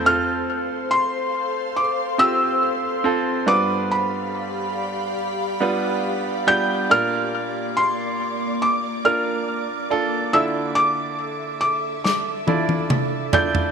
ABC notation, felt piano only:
X:1
M:4/4
L:1/8
Q:1/4=70
K:F
V:1 name="Felt piano"
f'2 c'2 d' e'3 | d' =b3 z3 g' | f'2 c'2 d' f'2 z | e' d'2 d' d'2 z g' |]